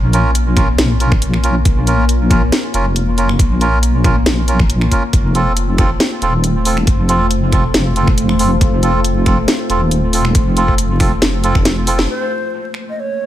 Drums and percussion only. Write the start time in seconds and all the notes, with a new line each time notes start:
0.13 closed hi-hat
0.35 closed hi-hat
0.57 finger snap, kick, closed hi-hat
0.78 snare, closed hi-hat
1.00 closed hi-hat
1.12 finger snap, kick
1.22 closed hi-hat
1.34 finger snap
1.44 closed hi-hat
1.65 kick, closed hi-hat
1.87 closed hi-hat
2.09 closed hi-hat
2.31 finger snap, kick, closed hi-hat
2.52 snare, closed hi-hat
2.74 closed hi-hat
2.96 closed hi-hat
3.18 closed hi-hat
3.29 finger snap
3.39 kick, closed hi-hat
3.61 closed hi-hat
3.83 closed hi-hat
4.04 finger snap, kick, closed hi-hat
4.26 snare, closed hi-hat
4.48 closed hi-hat
4.60 finger snap, kick
4.70 closed hi-hat
4.81 finger snap
4.91 kick, closed hi-hat
5.13 kick, closed hi-hat
5.35 closed hi-hat
5.57 closed hi-hat
5.78 finger snap, kick, closed hi-hat
6.00 snare, closed hi-hat
6.22 closed hi-hat
6.44 closed hi-hat
6.65 open hi-hat
6.77 finger snap
6.87 kick, closed hi-hat
7.09 closed hi-hat
7.31 closed hi-hat
7.52 finger snap, kick, closed hi-hat
7.74 snare, closed hi-hat
7.96 closed hi-hat
8.07 finger snap, kick
8.18 closed hi-hat
8.29 finger snap
8.39 open hi-hat
8.61 kick, closed hi-hat
8.83 closed hi-hat
9.04 closed hi-hat
9.26 finger snap, kick, closed hi-hat
9.48 snare, closed hi-hat
9.70 closed hi-hat
9.91 closed hi-hat
10.13 open hi-hat
10.25 finger snap
10.35 kick, closed hi-hat
10.57 closed hi-hat
10.68 kick
10.78 closed hi-hat
11.00 finger snap, kick, open hi-hat
11.22 snare, closed hi-hat
11.44 closed hi-hat
11.55 finger snap, kick
11.65 snare, closed hi-hat
11.87 open hi-hat
11.99 snare
12.74 finger snap